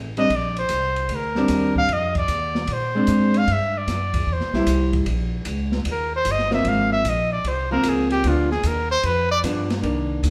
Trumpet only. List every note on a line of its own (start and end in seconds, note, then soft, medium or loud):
0.19 0.38 D#5 loud
0.36 0.58 D5 medium
0.59 1.17 C5 loud
1.15 1.77 A#4 medium
1.78 1.95 F5 loud
1.93 2.17 D#5 loud
2.18 2.75 D5 loud
2.73 3.40 C5 medium
3.38 3.54 F5 loud
3.53 3.79 E5 medium
3.78 4.34 D5 medium
4.33 4.96 C5 medium
5.92 6.14 A#4 medium
6.16 6.33 C5 loud
6.31 6.54 D#5 loud
6.54 6.70 E5 loud
6.68 6.92 F5 loud
6.93 7.10 E5 loud
7.09 7.32 D#5 medium
7.32 7.50 D5 medium
7.48 7.72 C5 medium
7.72 7.91 A#4 loud
7.89 8.11 G#4 medium
8.12 8.30 G4 loud
8.28 8.51 F4 medium
8.52 8.69 G#4 loud
8.67 8.91 A#4 medium
8.91 9.07 C5 loud
9.06 9.31 B4 loud
9.32 9.39 D5 loud